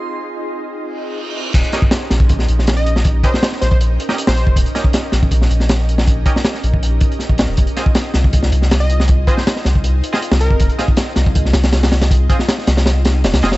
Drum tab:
CC |----------------|x---------------|----------------|----------------|
HH |----------------|xxx-x-x-x-x-x-x-|x-x-x-x-x-x-x-x-|xxx-x-x-x-x-x-x-|
SD |----------------|--o-o-o--o-oo--o|---oooo----o-o--|--o-o-o--o-oo--o|
BD |----------------|o--o---oo-------|o-o----o-------o|o--o---oo-------|

CC |----------------|----------------|----------------|----------------|
HH |x-x-x-x-x-xxx-x-|xxx-x-x-x-x-x-x-|x-x-x-x-x-x-x-x-|xxx-x-x-x-xxxxxx|
SD |---ooo------o-o-|--o-o-o--o-oo--o|---oooo----o-o--|--o-o-o--ooooooo|
BD |o-o----o--o--o--|o--o---oo-------|o-o----o-------o|o--o---oo-------|

CC |----------------|
HH |x-x-x-xxx-x-xxxx|
SD |---oooooo-o-oooo|
BD |o-o-------------|